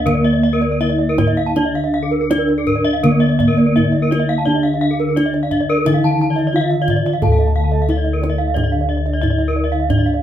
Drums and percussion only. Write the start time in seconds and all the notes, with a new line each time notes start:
0.06 kendang low
0.25 kendang slap
0.62 kendang slap
0.81 kendang slap
1.18 kendang slap, kendang high, kendang low
1.37 kendang slap
1.56 kendang high
1.75 kendang slap
1.93 kendang slap
2.31 kendang slap, kendang high
2.49 kendang slap
2.67 kendang low
3.04 kendang low
3.22 kendang slap
3.40 kendang low
3.58 kendang slap
3.77 kendang slap, kendang low
4.12 kendang slap, kendang high
4.30 kendang slap
4.66 kendang slap
4.83 kendang slap
5.17 kendang slap, kendang high
5.34 kendang slap
5.51 kendang low
5.86 kendang low
6.04 kendang slap
6.21 kendang slap
6.39 kendang slap
6.56 kendang slap
6.88 kendang slap, kendang low
7.06 kendang slap
7.22 kendang low
7.38 kendang slap
7.73 kendang slap
7.89 kendang high
8.06 kendang slap
8.23 kendang high
8.40 kendang slap
8.56 kendang high, kendang low
9.07 kendang slap
9.23 kendang low
9.40 kendang slap
9.74 kendang slap
9.90 kendang low
10.06 kendang slap